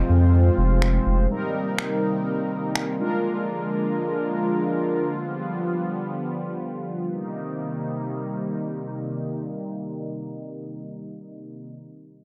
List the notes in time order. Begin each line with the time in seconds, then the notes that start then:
Already playing: G#2 C3 F3 G#3 C4 F4 C5
0.09 F2
0.58 F1
0.82 finger snap
1.06 F1
1.30 C3 D#3 G3 A#3 C4 D#4 A#4
1.79 finger snap
2.76 finger snap
2.99 D3 F3 G#3 D4 F4 A#4
5.18 G3 B3
7.11 C3 D#3 G3 A#3 D#4